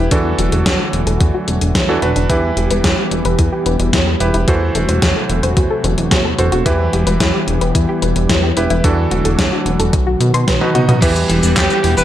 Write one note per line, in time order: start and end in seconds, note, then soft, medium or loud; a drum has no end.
0.11 0.34 E2 loud
0.11 2.27 D3 medium
0.11 1.86 E3 medium
0.11 2.27 F#3 medium
0.11 2.27 A3 medium
0.11 0.24 D4 medium
0.11 1.86 D4 medium
0.11 2.27 F#4 medium
0.11 1.86 F#4 medium
0.11 1.86 A4 medium
0.11 kick loud
0.11 closed hi-hat medium
0.39 0.50 E1 medium
0.39 0.48 F#4 medium
0.39 closed hi-hat medium
0.52 0.63 E1 medium
0.52 0.58 A4 medium
0.52 closed hi-hat medium
0.66 0.77 E2 medium
0.66 0.76 D4 medium
0.66 kick loud
0.66 snare loud
0.66 closed hi-hat medium
0.80 0.93 F#4 medium
0.93 1.04 E1 medium
0.93 closed hi-hat medium
1.07 1.18 E1 medium
1.07 1.13 A4 loud
1.07 closed hi-hat medium
1.21 1.32 E2 medium
1.21 1.34 D4 medium
1.21 kick loud
1.21 closed hi-hat medium
1.34 1.40 F#4 loud
1.48 1.59 E1 medium
1.48 1.58 A4 medium
1.48 closed hi-hat medium
1.61 1.73 E1 medium
1.61 closed hi-hat medium
1.75 1.97 E2 medium
1.75 1.81 D4 loud
1.75 kick loud
1.75 snare loud
1.75 closed hi-hat medium
1.89 1.99 E3 medium
1.89 1.99 D4 medium
1.89 1.99 F#4 medium
1.89 2.02 F#4 medium
1.89 1.99 A4 loud
2.02 2.13 E1 medium
2.02 2.26 D4 medium
2.02 2.26 F#4 medium
2.02 2.12 A4 medium
2.02 2.26 B4 loud
2.02 closed hi-hat medium
2.16 2.27 E1 medium
2.16 2.22 D4 loud
2.16 closed hi-hat medium
2.30 2.52 E2 loud
2.30 4.46 E3 medium
2.30 4.17 E3 medium
2.30 4.46 G3 medium
2.30 4.46 B3 medium
2.30 4.17 E4 medium
2.30 2.43 E4 medium
2.30 4.46 G4 medium
2.30 4.17 G4 medium
2.30 4.17 B4 medium
2.30 kick loud
2.30 closed hi-hat medium
2.57 2.68 E1 medium
2.57 2.67 G4 medium
2.57 closed hi-hat medium
2.71 2.82 E1 medium
2.71 2.77 B4 medium
2.71 closed hi-hat medium
2.84 2.95 E2 medium
2.84 2.94 E4 medium
2.84 kick loud
2.84 snare loud
2.84 closed hi-hat medium
2.98 3.11 G4 medium
3.11 3.23 E1 medium
3.11 closed hi-hat medium
3.25 3.36 E1 medium
3.25 3.31 B4 loud
3.25 closed hi-hat medium
3.39 3.50 E2 medium
3.39 3.52 E4 medium
3.39 kick loud
3.39 closed hi-hat medium
3.52 3.58 G4 loud
3.66 3.77 E1 medium
3.66 3.76 B4 medium
3.66 closed hi-hat medium
3.80 3.91 E1 loud
3.80 closed hi-hat medium
3.93 4.16 E2 loud
3.93 3.99 E4 loud
3.93 kick loud
3.93 snare loud
3.93 closed hi-hat medium
4.07 4.20 G4 medium
4.20 4.32 E1 medium
4.20 4.44 E4 medium
4.20 4.45 G4 medium
4.20 4.45 B4 medium
4.20 4.30 B4 medium
4.20 closed hi-hat medium
4.34 4.45 E1 loud
4.34 4.40 E4 loud
4.34 closed hi-hat medium
4.48 4.70 E2 loud
4.48 6.64 C3 medium
4.48 6.36 E3 medium
4.48 6.64 F#3 medium
4.48 6.64 A3 medium
4.48 4.61 F#4 medium
4.48 6.64 F#4 medium
4.48 6.36 F#4 medium
4.48 6.35 A4 medium
4.48 6.35 C5 medium
4.48 kick loud
4.48 closed hi-hat medium
4.75 4.86 E1 medium
4.75 4.85 A4 medium
4.75 closed hi-hat medium
4.89 5.00 E1 medium
4.89 4.95 C5 medium
4.89 closed hi-hat medium
5.02 5.13 E2 medium
5.02 5.12 F#4 medium
5.02 kick loud
5.02 snare loud
5.02 closed hi-hat medium
5.16 5.29 A4 medium
5.30 5.41 E1 medium
5.30 closed hi-hat medium
5.43 5.54 E1 medium
5.43 5.49 C5 loud
5.43 closed hi-hat medium
5.57 5.68 E2 medium
5.57 5.70 F#4 medium
5.57 kick loud
5.57 closed hi-hat medium
5.70 5.76 A4 loud
5.84 5.95 E1 loud
5.84 5.94 C5 medium
5.84 closed hi-hat medium
5.98 6.09 E1 loud
5.98 closed hi-hat medium
6.11 6.34 E2 medium
6.11 6.17 F#4 loud
6.11 kick loud
6.11 snare loud
6.11 closed hi-hat medium
6.25 6.38 A4 medium
6.38 6.50 E1 loud
6.38 6.63 F#4 medium
6.38 6.63 A4 medium
6.38 6.48 C5 medium
6.38 6.63 C5 medium
6.38 closed hi-hat medium
6.52 6.63 E1 loud
6.52 6.58 F#4 loud
6.52 closed hi-hat medium
6.66 6.88 E2 loud
6.66 8.54 E3 medium
6.66 8.82 E3 medium
6.66 8.82 G3 medium
6.66 8.82 B3 medium
6.66 8.54 E4 medium
6.66 6.79 E4 medium
6.66 8.54 G4 medium
6.66 8.82 G4 medium
6.66 8.54 B4 medium
6.66 kick loud
6.66 closed hi-hat medium
6.93 7.04 E1 medium
6.93 7.03 G4 medium
6.93 closed hi-hat medium
7.07 7.18 E1 medium
7.07 7.13 B4 medium
7.07 closed hi-hat medium
7.20 7.32 E2 medium
7.20 7.30 E4 medium
7.20 kick loud
7.20 snare loud
7.20 closed hi-hat medium
7.34 7.47 G4 medium
7.48 7.59 E1 medium
7.48 closed hi-hat medium
7.61 7.73 E1 medium
7.61 7.67 B4 loud
7.61 closed hi-hat medium
7.75 7.86 E2 medium
7.75 7.88 E4 medium
7.75 kick loud
7.75 closed hi-hat medium
7.89 7.95 G4 loud
8.02 8.14 E1 loud
8.02 8.12 B4 medium
8.02 closed hi-hat medium
8.16 8.27 E1 loud
8.16 closed hi-hat medium
8.29 8.52 E2 loud
8.29 8.36 E4 loud
8.29 kick loud
8.29 snare loud
8.29 closed hi-hat medium
8.43 8.56 G4 medium
8.57 8.68 E1 loud
8.57 8.81 E4 medium
8.57 8.81 G4 medium
8.57 8.81 B4 medium
8.57 8.67 B4 medium
8.57 closed hi-hat medium
8.70 8.82 E1 medium
8.70 8.76 E4 loud
8.70 closed hi-hat medium
8.84 9.06 E2 loud
8.84 9.92 D3 medium
8.84 9.92 E3 medium
8.84 11.00 F#3 medium
8.84 9.92 A3 medium
8.84 8.97 D4 medium
8.84 9.92 D4 medium
8.84 11.00 F#4 medium
8.84 9.92 F#4 medium
8.84 9.92 A4 loud
8.84 kick loud
8.84 closed hi-hat medium
9.11 9.23 E1 medium
9.11 9.21 F#4 medium
9.11 closed hi-hat medium
9.25 9.36 E1 medium
9.25 9.31 A4 medium
9.25 closed hi-hat medium
9.39 9.50 E2 medium
9.39 9.48 D4 medium
9.39 kick loud
9.39 snare loud
9.39 closed hi-hat medium
9.52 9.65 F#4 medium
9.66 9.77 E1 medium
9.66 closed hi-hat medium
9.79 9.91 E1 medium
9.79 9.85 A4 loud
9.79 closed hi-hat medium
9.93 10.16 B1 loud
9.93 11.01 D#3 medium
9.93 11.01 B3 medium
9.93 10.06 D#4 medium
9.93 kick loud
9.93 closed hi-hat medium
10.07 10.13 F#4 loud
10.20 10.32 B2 medium
10.20 10.30 F#4 medium
10.20 closed hi-hat medium
10.34 10.45 B2 loud
10.34 10.40 C6 medium
10.34 closed hi-hat medium
10.47 10.59 B1 loud
10.47 10.53 B4 loud
10.47 kick loud
10.47 snare loud
10.47 closed hi-hat medium
10.47 high tom medium
10.61 10.72 B2 medium
10.61 10.72 D#4 medium
10.61 10.71 F#4 medium
10.61 10.72 F#4 medium
10.61 10.72 B4 loud
10.61 high tom medium
10.75 10.86 B2 medium
10.75 10.99 D#4 medium
10.75 10.81 F#4 loud
10.75 10.99 F#4 medium
10.75 10.99 D#5 loud
10.75 closed hi-hat medium
10.75 mid tom medium
10.88 11.00 B2 medium
10.88 10.98 D#5 medium
10.88 closed hi-hat medium
10.88 mid tom medium
11.02 11.25 E2 loud
11.02 12.04 E3 medium
11.02 11.09 E3 medium
11.02 12.04 E3 medium
11.02 12.04 G3 medium
11.02 12.04 B3 medium
11.02 12.04 E4 medium
11.02 12.04 G4 medium
11.02 12.04 B4 loud
11.02 kick loud
11.02 closed hi-hat loud
11.02 crash loud
11.02 shaker soft
11.16 closed hi-hat soft
11.16 shaker soft
11.29 11.41 E1 medium
11.29 11.36 E3 medium
11.29 closed hi-hat medium
11.43 11.54 E1 medium
11.43 11.50 G3 medium
11.43 closed hi-hat soft
11.43 shaker medium
11.57 11.68 E2 medium
11.57 11.67 B3 medium
11.57 11.95 G4 loud
11.57 11.95 G5 medium
11.57 kick loud
11.57 snare loud
11.57 clap loud
11.57 closed hi-hat loud
11.57 shaker soft
11.70 11.77 E3 medium
11.70 closed hi-hat soft
11.70 shaker soft
11.84 11.95 E1 medium
11.84 11.91 E3 loud
11.84 open hi-hat medium
11.97 12.04 E1 medium
11.97 12.04 E4 loud
11.97 12.04 B4 loud
11.97 12.04 B5 loud
11.97 closed hi-hat soft
11.97 shaker medium